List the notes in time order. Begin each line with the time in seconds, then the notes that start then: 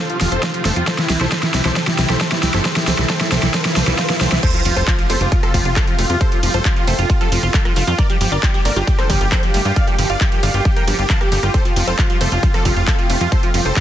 Already playing: C3 G3 A3 F4 G4, riser
0.10 F3 F4, closed hi-hat
0.21 F1 F3 F4, snare, open hi-hat
0.32 F1 F4 A4 C5, closed hi-hat
0.43 F3 F4, kick, snare, closed hi-hat
0.54 F3 F4, closed hi-hat
0.65 F1 A3 A4 C5, snare, open hi-hat
0.76 F2 F4, closed hi-hat
0.87 E3 G3 E4 G4 A4 C5, kick, snare, closed hi-hat
0.98 E3 E4, snare, closed hi-hat
1.10 C2 E3 E4, snare, open hi-hat
1.21 C2 E4 A4 C5, snare, closed hi-hat
1.32 E3 A4 C5, kick, snare, closed hi-hat
1.43 E3 E4, snare, closed hi-hat
1.54 C2 E3 E4, snare, open hi-hat
1.65 C2 E4 A4 C5, snare, closed hi-hat
1.76 E3 A4 C5, kick, snare, closed hi-hat
1.87 E3 E4, snare, closed hi-hat
1.99 C2 E3 E4, kick, snare, open hi-hat
2.10 C2 E4 A4 C5, snare, closed hi-hat
2.21 E3 A4 C5, kick, snare, closed hi-hat
2.32 E3 E4, snare, closed hi-hat
2.43 C2 E3 E4, snare, open hi-hat
2.54 G1 E4 A4 C5, snare, closed hi-hat
2.65 E3 A4 C5, kick, snare, closed hi-hat
2.76 E3 E4, snare, open hi-hat
2.87 C2 E3 A4 C5, snare, open hi-hat
2.99 C2 E3 E4, snare
3.10 E3 A4 C5, kick, snare, closed hi-hat
3.21 E3 E4, snare, closed hi-hat
3.32 C2 E3 A4 C5, snare, open hi-hat
3.43 C2 E3 E4, snare, closed hi-hat
3.54 E3 A4 C5, kick, snare, closed hi-hat, swell
3.65 E3 E4, snare, closed hi-hat
3.76 C2 E3 A4 C5, snare, open hi-hat
3.87 C2 E3 E4, snare, closed hi-hat
3.99 E3 A4 C5, kick, snare, closed hi-hat
4.10 E3 E4, snare, closed hi-hat
4.21 C2 E3 A4 C5, snare, open hi-hat
4.32 C2 E3 E4, snare, closed hi-hat
4.43 C3 F3 G3 A3 F4 G4 A4 C5, kick, closed hi-hat, crash, sub drop
4.54 F3 F4, closed hi-hat
4.65 F1 F3 F4, open hi-hat, ride
4.76 F1 F4 A4 C5, closed hi-hat
4.87 F3 F4, kick, clap, closed hi-hat
4.98 F3 F4, closed hi-hat
5.10 F1 A3 A4 C5, open hi-hat, ride
5.21 F1 F4, closed hi-hat
5.32 F3 F4, kick, closed hi-hat
5.43 F3 F4 A4, cross-stick, closed hi-hat
5.54 F1 F3 F4, kick, open hi-hat, ride
5.65 F1 F4, closed hi-hat
5.76 F3 F4 A4, kick, clap, closed hi-hat
5.87 F3 F4, closed hi-hat
5.98 F1 A3 F4, open hi-hat, ride
6.10 F2 F4, closed hi-hat
6.21 F3 A4 C5, kick, closed hi-hat
6.32 F3 F4, closed hi-hat
6.43 F1 F3 F4, open hi-hat, ride
6.54 F1 F4 A4 C5, closed hi-hat
6.65 F3 F4, kick, clap, closed hi-hat
6.76 F3 F4, closed hi-hat
6.87 F1 A3 A4 C5, open hi-hat, ride
6.99 F1 F4, closed hi-hat
7.10 F3 F4, kick, closed hi-hat
7.21 F3 F4 A4, closed hi-hat
7.32 F1 F3 F4, open hi-hat, ride
7.43 F1 F4, closed hi-hat
7.54 F3 F4 A4, kick, clap, closed hi-hat
7.65 F3 F4, cross-stick, closed hi-hat
7.76 F1 A3 F4, open hi-hat, ride
7.87 F2 F4, closed hi-hat
7.98 D3 F3 G3 A#3 F4 G4 A#4 D5, kick, closed hi-hat
8.10 F3 G4, closed hi-hat
8.21 G1 F3 G4, open hi-hat, ride
8.32 G1 F4 A#4 D5, closed hi-hat
8.43 F3 G4, kick, clap, closed hi-hat
8.54 F3 G4, closed hi-hat
8.65 G1 A3 A#4 D5, open hi-hat, ride
8.76 G1 F4 G4, closed hi-hat
8.87 F3 G4, kick, closed hi-hat
8.98 F3 A4 C5, cross-stick, closed hi-hat
9.10 G1 F3 G4, kick, open hi-hat, ride
9.21 G1 F4 G4, closed hi-hat
9.32 F3 A4 C5, kick, clap, closed hi-hat
9.43 F3 G4, closed hi-hat
9.54 G1 A3 G4, open hi-hat, ride
9.65 G2 F4 G4, closed hi-hat
9.76 F3 D5 F5, kick, closed hi-hat
9.87 F3 G4, closed hi-hat
9.99 G1 F3 G4, open hi-hat, ride
10.10 G1 F4 D5 F5, closed hi-hat
10.21 F3 G4, kick, clap, closed hi-hat
10.32 F3 G4, closed hi-hat
10.43 G1 A3 D5 F5, open hi-hat, ride
10.54 G1 F4 G4, closed hi-hat
10.65 F3 G4, kick, closed hi-hat
10.76 F3 A#4 G5, closed hi-hat
10.87 G1 F3 G4, open hi-hat, ride
10.98 G1 F4 G4, closed hi-hat
11.10 F3 F5 A5, kick, clap, closed hi-hat
11.21 F3 G4, cross-stick, closed hi-hat
11.32 G1 A3 G4, open hi-hat, ride
11.43 G1 F4 G4, cross-stick, closed hi-hat
11.54 C3 F3 G3 A3 A4 C5, kick, closed hi-hat
11.65 F3 F4, closed hi-hat
11.76 F1 F3 F4, open hi-hat, ride
11.87 F1 F4 A4 C5, closed hi-hat
11.98 F3 F4, kick, clap, closed hi-hat
12.10 F3 F4, closed hi-hat
12.21 F1 A3 A4 C5, open hi-hat, ride
12.32 F1 F4, closed hi-hat
12.43 F3 F4, kick, closed hi-hat
12.54 F3 F4 A4, cross-stick, closed hi-hat
12.65 F1 F3 F4, kick, open hi-hat, ride
12.76 F1 F4, closed hi-hat
12.87 F3 F4 A4, kick, clap, closed hi-hat
12.99 F3 F4, closed hi-hat
13.10 F1 A3 F4, open hi-hat, ride
13.21 F2 F4, closed hi-hat
13.32 F3 A4 C5, kick, closed hi-hat
13.43 F3 F4, closed hi-hat
13.54 F1 F3 F4, open hi-hat, ride
13.65 F1 F4 A4 C5, closed hi-hat
13.76 F3 F4, kick, clap, closed hi-hat